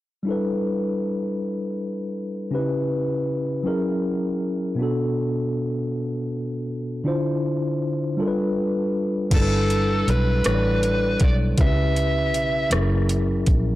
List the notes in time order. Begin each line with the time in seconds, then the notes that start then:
0.23 G3 D4 E4
0.29 A4 B4
2.51 C#3 C#4 D#4 G4
2.55 B4
2.59 E4
3.63 F#3 C#4 E4 G#4 A#4
4.75 B2 B3
4.79 D4 F#4 A4
7.04 D3 D4 E4 F4 C5
8.17 G3 D4 F4 A4 A#4
8.28 B4
9.30 G1 G3 D4 E4 A4 A#4, kick, closed hi-hat, crash
9.34 A4
9.41 B4
9.70 closed hi-hat
10.08 B1 B4, closed hi-hat
10.44 A1 G3 D4 E4 A4, cross-stick, closed hi-hat
10.48 C#5
10.55 D5
10.83 closed hi-hat
11.20 B1, kick, closed hi-hat
11.24 D5
11.57 C#2 C#3 C#4 E4 G4, kick, closed hi-hat
11.61 B4 E5
11.96 closed hi-hat
12.34 B1, closed hi-hat
12.70 F#1 F#3 C#4 E4 G#4, cross-stick, closed hi-hat
12.74 A4
12.80 A#4
13.09 closed hi-hat
13.46 A#1, kick, closed hi-hat